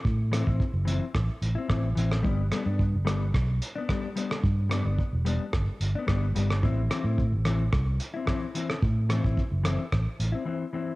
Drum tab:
HH |--x---x---x---x-|--x---x---x---x-|--x---x---x---x-|--x---x---x---x-|
SD |--r-----r---r--r|--r---r-r---r--r|--r-----r---r--r|--r---r-r---r--r|
BD |o--oo---o---o---|o---o---o---o---|o---o---o---o---|o---o---o---o---|

HH |--x---x---x-----|
SD |--r---r-r-------|
BD |o--oo---o-------|